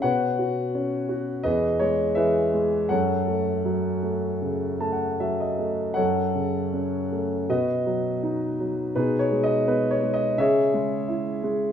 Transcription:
0.02 1.41 B2 medium
0.02 1.41 B4 medium
0.02 1.41 C#5 medium
0.02 1.04 F#5 medium
0.39 1.07 F#4 soft
0.75 1.43 C#4 soft
1.09 1.43 F#4 soft
1.43 2.86 E2 medium
1.43 2.14 G#4 medium
1.43 2.15 B4 medium
1.43 1.81 D#5 medium
1.79 2.52 G#3 soft
1.79 2.17 C#5 medium
2.15 2.88 E3 soft
2.15 2.86 G#4 soft
2.15 2.86 B4 medium
2.15 2.91 E5 medium
2.54 2.89 G#3 soft
2.89 5.93 F#2 medium
2.89 5.15 A4 medium
2.89 5.15 C#5 medium
2.89 4.91 F#5 medium
3.28 4.01 A3 soft
3.65 5.15 F#3 soft
4.03 4.79 A3 soft
4.41 5.93 C#3 soft
4.80 5.57 A3 soft
4.80 4.92 A5 medium
4.92 5.17 F#5 soft
5.20 5.95 F#3 soft
5.20 5.38 E5 soft
5.40 5.94 D#5 soft
5.59 5.96 A3 soft
5.94 7.45 F#2 medium
5.94 7.45 A4 medium
5.94 7.45 C#5 medium
5.94 7.06 F#5 medium
6.35 7.46 C#3 soft
6.73 7.47 C#4 soft
7.12 7.48 A3 soft
7.49 8.91 B2 medium
7.49 8.91 F#4 soft
7.49 8.91 B4 medium
7.49 9.00 D#5 medium
7.86 8.58 F#3 soft
8.23 8.93 D#4 soft
8.60 8.94 F#3 soft
8.95 10.34 B2 medium
8.95 10.35 D#4 medium
8.95 10.34 G#4 soft
8.95 9.20 B4 medium
9.19 9.44 C#5 medium
9.32 10.02 G#3 soft
9.43 9.68 D#5 medium
9.67 10.36 B3 medium
9.67 9.92 B4 medium
9.91 10.15 C#5 medium
10.03 10.37 G#3 soft
10.14 10.38 D#5 medium
10.38 11.72 C#3 medium
10.38 11.72 G#4 medium
10.38 11.72 C#5 medium
10.38 11.39 E5 medium
10.74 11.42 G#3 soft
11.08 11.72 E4 medium
11.43 11.72 G#3 medium

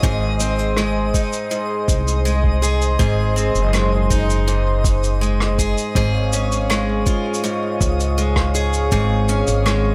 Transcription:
0.00 1.10 G#1 medium
0.00 1.50 G#2 medium
0.00 0.77 G#3 medium
0.00 0.10 C#4 medium
0.00 0.11 F4 medium
0.00 5.92 G#4 medium
0.00 5.92 C5 medium
0.00 9.95 D#5 medium
0.00 5.92 D#5 medium
0.00 5.92 C6 medium
0.00 kick loud
0.00 shaker soft
0.04 2.62 G#4 medium
0.40 3.35 C4 medium
0.40 shaker medium
0.59 shaker medium
0.77 2.25 G#3 medium
0.77 cross-stick medium
0.77 shaker soft
1.14 4.09 D#4 medium
1.14 kick medium
1.14 shaker medium
1.33 shaker medium
1.51 2.98 G#2 medium
1.51 shaker soft
1.88 2.95 C2 medium
1.88 kick medium
1.88 shaker medium
2.08 shaker medium
2.25 3.73 G#3 medium
2.25 shaker soft
2.44 kick medium
2.62 2.99 G#4 medium
2.62 shaker medium
2.81 shaker medium
2.99 3.51 G#1 medium
2.99 4.46 G#2 medium
2.99 5.58 G#4 medium
2.99 kick loud
2.99 shaker soft
3.36 6.03 C4 medium
3.36 shaker medium
3.55 5.73 F#1 medium
3.55 shaker soft
3.73 5.21 G#3 medium
3.73 cross-stick medium
3.73 shaker soft
4.10 6.03 D#4 medium
4.10 kick medium
4.10 shaker medium
4.30 shaker medium
4.48 5.95 G#2 medium
4.48 shaker soft
4.84 kick loud
4.84 shaker medium
5.04 shaker soft
5.21 6.69 G#3 medium
5.21 shaker soft
5.40 cross-stick medium
5.58 5.96 G#4 medium
5.58 kick medium
5.58 shaker medium
5.78 shaker medium
5.95 7.02 G#1 medium
5.95 7.42 G#2 medium
5.95 9.95 G#4 medium
5.95 8.54 G#4 medium
5.95 9.95 C#5 medium
5.95 9.95 F5 medium
5.95 9.95 C#6 medium
5.95 kick loud
5.95 shaker soft
6.33 9.28 C#4 medium
6.33 shaker medium
6.52 shaker medium
6.70 8.17 G#3 medium
6.70 cross-stick medium
6.70 shaker soft
7.06 9.95 F4 medium
7.06 kick medium
7.06 shaker medium
7.34 shaker medium
7.44 8.91 G#2 medium
7.44 shaker soft
7.81 8.88 C#2 medium
7.81 kick medium
7.81 shaker medium
8.00 shaker medium
8.18 9.65 G#3 medium
8.18 shaker soft
8.36 kick medium
8.36 cross-stick medium
8.55 8.92 G#4 medium
8.55 shaker medium
8.73 shaker medium
8.91 9.43 G#1 medium
8.91 9.95 G#2 medium
8.91 9.95 G#4 medium
8.91 kick loud
8.91 shaker soft
9.29 9.95 C#4 medium
9.29 shaker medium
9.47 9.95 G#1 medium
9.47 shaker medium
9.66 9.95 G#3 medium
9.66 cross-stick medium
9.66 shaker medium

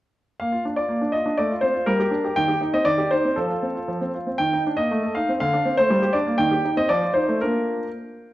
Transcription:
0.40 0.53 A#3 soft
0.40 0.62 F5 soft
0.52 0.65 F4 soft
0.65 0.78 D4 soft
0.76 0.91 F4 soft
0.76 1.14 D5 medium
0.88 1.01 A#3 soft
1.01 1.15 D4 soft
1.12 1.27 F4 soft
1.12 1.38 D#5 medium
1.26 1.39 D4 soft
1.38 1.51 A3 soft
1.38 1.53 D5 medium
1.51 1.64 F4 soft
1.61 1.76 C4 soft
1.61 1.87 C5 medium
1.74 1.88 F4 soft
1.86 2.00 G3 soft
1.86 2.37 A#4 medium
2.00 2.13 G4 soft
2.11 2.25 D4 soft
2.24 2.37 G4 soft
2.36 2.50 D#3 soft
2.36 2.59 G5 medium
2.48 2.62 G4 soft
2.61 2.75 D#4 soft
2.74 2.87 C4 soft
2.74 2.87 D#5 medium
2.85 2.99 D#3 soft
2.85 3.11 D5 medium
2.98 3.12 G4 soft
3.11 3.26 D#4 soft
3.11 3.37 C5 medium
3.25 3.38 C4 soft
3.36 3.50 F3 soft
3.36 4.10 A4 soft
3.50 3.64 F4 soft
3.63 3.77 C4 soft
3.75 3.89 F4 soft
3.88 4.01 F3 soft
4.01 4.15 C4 soft
4.15 4.28 F4 soft
4.27 4.40 C4 soft
4.38 4.52 D#3 soft
4.38 4.61 G5 medium
4.53 4.66 D#4 soft
4.67 4.79 D4 soft
4.77 4.91 A#3 soft
4.77 5.15 D#5 medium
4.91 5.03 A3 soft
5.03 5.17 A4 soft
5.15 5.29 D#4 soft
5.15 5.30 F5 medium
5.29 5.41 C4 soft
5.40 5.53 D3 soft
5.40 5.74 F5 medium
5.53 5.66 D4 soft
5.65 5.78 C4 soft
5.77 5.91 A3 soft
5.77 6.15 C5 medium
5.90 6.02 G3 soft
6.02 6.15 G4 soft
6.13 6.27 D4 soft
6.13 6.36 D5 medium
6.27 6.39 A#3 soft
6.38 6.51 D#3 soft
6.38 6.72 G5 medium
6.51 6.65 G4 soft
6.65 6.78 D#4 soft
6.77 6.89 C4 soft
6.77 6.90 D#5 medium
6.89 7.02 F3 soft
6.89 7.12 D5 medium
7.04 7.16 F4 soft
7.13 7.28 D#4 soft
7.13 7.40 C5 medium
7.28 7.41 A3 soft
7.41 7.78 A#3 soft
7.41 7.83 D4 soft
7.41 7.84 F4 soft
7.41 7.88 A#4 medium

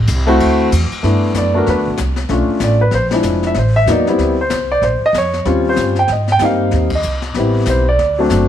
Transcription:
0.07 0.39 C2 loud
0.07 hi-hat pedal medium
0.07 ride medium
0.27 0.69 A3 medium
0.27 0.69 C4 medium
0.27 0.69 E4 medium
0.27 0.70 F#4 loud
0.27 ride medium
0.40 0.71 D2 medium
0.40 ride medium
0.72 0.90 E2 loud
0.72 hi-hat pedal medium
0.72 ride medium
0.91 muted upright bass stroke soft
0.91 ride medium
1.03 1.34 G2 medium
1.03 1.50 A3 medium
1.03 1.51 B3 medium
1.03 1.51 D4 medium
1.03 1.51 E4 medium
1.03 brush sweep soft
1.03 snare soft
1.34 1.65 F#2 medium
1.34 1.55 D5 medium
1.34 snare medium
1.34 hi-hat pedal medium
1.54 1.96 A3 medium
1.54 1.96 B3 medium
1.54 1.96 D4 medium
1.54 1.96 F#4 medium
1.54 1.68 A#4 medium
1.66 1.78 E2 medium
1.66 1.87 B4 medium
1.66 brush sweep soft
1.66 snare soft
1.78 1.87 D2 soft
1.88 1.97 B1 medium
1.97 2.29 C2 medium
1.97 snare medium
1.97 hi-hat pedal medium
2.16 snare soft
2.29 2.48 B1 medium
2.29 2.77 A3 medium
2.29 2.77 C#4 soft
2.29 2.77 D4 medium
2.29 2.78 F4 medium
2.29 brush sweep soft
2.29 snare soft
2.48 muted upright bass stroke soft
2.60 2.91 A1 medium
2.60 2.82 D5 medium
2.60 snare medium
2.60 hi-hat pedal medium
2.81 2.93 B4 medium
2.91 3.23 A#1 medium
2.91 3.06 C5 medium
2.91 brush sweep soft
2.91 snare soft
3.11 3.54 F3 medium
3.11 3.54 G#3 soft
3.11 3.54 D4 medium
3.11 3.54 E4 medium
3.11 snare medium
3.23 3.54 F1 medium
3.23 snare medium
3.23 hi-hat pedal medium
3.43 snare soft
3.47 3.57 E5 medium
3.54 3.86 A1 medium
3.54 3.76 C5 medium
3.54 brush sweep soft
3.54 snare soft
3.76 3.88 E5 loud
3.86 4.17 E2 medium
3.86 4.05 F#3 medium
3.86 4.05 A#3 medium
3.86 4.06 B3 medium
3.86 4.06 D#4 medium
3.86 snare medium
3.86 hi-hat pedal medium
3.91 4.37 D5 medium
4.07 4.35 G3 medium
4.07 4.35 B3 medium
4.07 4.36 C4 medium
4.07 4.36 E4 medium
4.07 snare soft
4.18 4.49 D2 medium
4.18 brush sweep soft
4.18 snare soft
4.41 4.81 C5 medium
4.50 4.81 C2 medium
4.50 snare medium
4.50 hi-hat pedal medium
4.72 4.83 D5 medium
4.82 5.00 A#1 medium
4.82 5.02 C5 medium
4.82 brush sweep soft
4.82 snare soft
5.02 5.16 D#5 loud
5.02 muted upright bass stroke soft
5.13 5.44 F2 medium
5.13 snare medium
5.13 hi-hat pedal medium
5.18 5.64 C#5 medium
5.33 snare soft
5.45 5.76 D#2 medium
5.45 5.93 G3 medium
5.45 5.93 C4 medium
5.45 5.93 C#4 medium
5.45 5.93 F4 medium
5.45 brush sweep soft
5.45 snare soft
5.69 6.08 C5 medium
5.76 6.08 G2 medium
5.76 snare medium
5.76 hi-hat pedal medium
5.95 6.10 G5 medium
5.95 snare soft
6.08 6.40 G#2 medium
6.08 brush sweep soft
6.08 snare soft
6.12 6.30 D#5 medium
6.28 snare soft
6.32 6.42 G5 loud
6.39 6.71 G2 medium
6.39 6.88 G3 medium
6.39 6.88 A#3 soft
6.39 6.88 C4 medium
6.39 6.88 D#4 medium
6.39 snare medium
6.39 hi-hat pedal medium
6.45 6.90 F5 medium
6.71 7.03 D#2 medium
6.71 brush sweep soft
6.71 snare soft
6.90 kick medium
6.90 ride medium
6.95 7.34 D#5 medium
7.03 7.35 C2 medium
7.03 hi-hat pedal medium
7.22 snare soft
7.34 7.66 A1 medium
7.34 7.83 G3 soft
7.34 7.83 B3 soft
7.34 7.84 C4 soft
7.34 brush sweep soft
7.34 snare soft
7.39 7.84 E4 medium
7.66 7.97 B1 medium
7.66 snare medium
7.66 hi-hat pedal medium
7.70 7.87 C5 medium
7.89 8.17 D5 medium
7.99 8.30 D2 medium
7.99 brush sweep soft
7.99 snare soft
8.19 8.48 F#3 medium
8.19 8.48 A3 medium
8.19 8.48 C4 medium
8.19 8.48 D4 medium
8.30 8.48 F#1 medium
8.30 snare medium
8.30 hi-hat pedal medium

